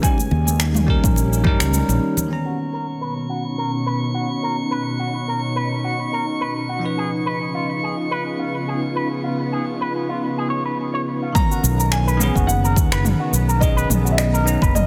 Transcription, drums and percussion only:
0.03 kick loud
0.03 shaker medium
0.18 high conga medium
0.18 shaker soft
0.31 muted conga medium
0.47 high conga medium
0.47 shaker medium
0.60 finger snap medium
0.60 shaker medium
0.75 mid tom medium
0.75 high conga medium
0.75 shaker soft
0.88 kick medium
1.04 kick loud
1.04 mid tom medium
1.04 shaker medium
1.16 muted conga medium
1.16 shaker medium
1.33 shaker soft
1.44 kick loud
1.44 low conga medium
1.60 finger snap medium
1.60 shaker medium
1.73 high conga medium
1.73 shaker medium
1.89 muted conga medium
1.89 shaker soft
2.17 low conga medium
2.17 shaker medium
11.35 kick loud
11.35 mid tom medium
11.35 shaker soft
11.52 shaker soft
11.64 shaker medium
11.80 shaker soft
11.92 finger snap medium
11.92 shaker soft
12.08 shaker soft
12.20 mid tom medium
12.20 shaker medium
12.36 kick medium
12.36 shaker soft
12.49 shaker soft
12.65 shaker soft
12.76 kick loud
12.76 shaker medium
12.92 finger snap medium
12.92 shaker soft
13.05 mid tom medium
13.05 shaker soft
13.34 shaker medium
13.49 shaker soft
13.61 kick loud
13.61 shaker soft
13.78 shaker soft
13.90 mid tom medium
13.90 shaker medium
14.07 shaker soft
14.18 finger snap medium
14.18 shaker soft
14.35 shaker soft
14.47 shaker medium
14.62 kick loud
14.62 shaker soft
14.75 mid tom medium
14.75 shaker soft

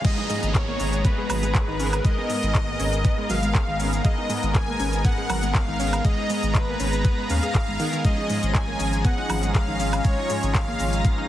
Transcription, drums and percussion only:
0.05 kick loud
0.05 closed hi-hat medium
0.05 crash loud
0.05 shaker soft
0.30 open hi-hat loud
0.30 shaker medium
0.43 closed hi-hat medium
0.43 shaker soft
0.55 kick loud
0.55 clap loud
0.55 closed hi-hat medium
0.55 shaker soft
0.80 open hi-hat loud
0.80 shaker medium
0.93 closed hi-hat medium
0.93 shaker soft
1.05 kick loud
1.05 closed hi-hat medium
1.05 shaker soft
1.30 open hi-hat loud
1.30 high woodblock medium
1.30 shaker medium
1.43 closed hi-hat medium
1.43 shaker soft
1.55 kick loud
1.55 clap loud
1.55 closed hi-hat medium
1.55 shaker soft
1.80 open hi-hat loud
1.80 shaker medium
1.93 closed hi-hat medium
1.93 high woodblock medium
1.93 shaker soft
2.05 kick loud
2.05 closed hi-hat medium
2.05 shaker soft
2.30 open hi-hat loud
2.30 shaker medium
2.43 closed hi-hat medium
2.43 shaker soft
2.55 kick loud
2.55 clap loud
2.55 closed hi-hat medium
2.55 shaker soft
2.80 open hi-hat loud
2.80 shaker medium
2.93 closed hi-hat medium
2.93 shaker soft
3.05 kick loud
3.05 closed hi-hat medium
3.05 shaker soft
3.30 open hi-hat loud
3.30 shaker medium
3.43 closed hi-hat medium
3.43 shaker soft
3.55 kick loud
3.55 clap loud
3.55 closed hi-hat medium
3.55 shaker soft
3.80 open hi-hat loud
3.80 shaker medium
3.93 closed hi-hat medium
3.93 shaker soft
4.05 kick loud
4.05 closed hi-hat medium
4.05 shaker soft
4.30 open hi-hat loud
4.30 shaker medium
4.43 closed hi-hat medium
4.43 shaker soft
4.55 kick loud
4.55 clap loud
4.55 closed hi-hat medium
4.55 shaker soft
4.80 open hi-hat loud
4.80 shaker medium
4.93 closed hi-hat medium
4.93 shaker soft
5.05 kick loud
5.05 closed hi-hat medium
5.05 shaker soft
5.30 open hi-hat loud
5.30 high woodblock medium
5.30 shaker medium
5.43 closed hi-hat medium
5.43 shaker soft
5.55 kick loud
5.55 clap loud
5.55 closed hi-hat medium
5.55 shaker soft
5.80 open hi-hat loud
5.80 shaker medium
5.93 closed hi-hat medium
5.93 high woodblock medium
5.93 shaker soft
6.05 kick loud
6.05 closed hi-hat medium
6.05 shaker soft
6.30 open hi-hat loud
6.30 shaker medium
6.43 closed hi-hat medium
6.43 shaker soft
6.55 kick loud
6.55 clap loud
6.55 closed hi-hat medium
6.55 shaker soft
6.80 open hi-hat loud
6.80 shaker medium
6.93 closed hi-hat medium
6.93 shaker soft
7.05 kick loud
7.05 closed hi-hat soft
7.05 shaker soft
7.30 open hi-hat loud
7.30 shaker medium
7.43 closed hi-hat medium
7.43 shaker soft
7.55 kick loud
7.55 clap loud
7.55 closed hi-hat medium
7.55 shaker soft
7.80 open hi-hat loud
7.80 shaker medium
7.93 closed hi-hat medium
7.93 shaker soft
8.05 kick loud
8.05 closed hi-hat medium
8.05 shaker soft
8.30 open hi-hat loud
8.30 shaker medium
8.43 closed hi-hat medium
8.43 shaker soft
8.55 kick loud
8.55 clap loud
8.55 closed hi-hat medium
8.55 shaker soft
8.80 open hi-hat loud
8.80 shaker medium
8.93 closed hi-hat medium
8.93 shaker soft
9.05 kick loud
9.05 closed hi-hat soft
9.05 shaker soft
9.30 open hi-hat loud
9.30 high woodblock medium
9.30 shaker medium
9.43 closed hi-hat medium
9.43 shaker soft
9.55 kick loud
9.55 clap loud
9.55 closed hi-hat medium
9.55 shaker soft
9.80 open hi-hat loud
9.80 shaker medium
9.93 closed hi-hat medium
9.93 high woodblock medium
9.93 shaker soft
10.05 kick loud
10.05 closed hi-hat medium
10.05 shaker soft
10.30 open hi-hat loud
10.30 shaker medium
10.43 closed hi-hat medium
10.43 shaker soft
10.55 kick loud
10.55 clap loud
10.55 closed hi-hat medium
10.55 shaker soft
10.80 open hi-hat loud
10.80 shaker medium
10.93 closed hi-hat medium
10.93 shaker soft
11.05 kick loud
11.05 closed hi-hat medium
11.05 shaker soft

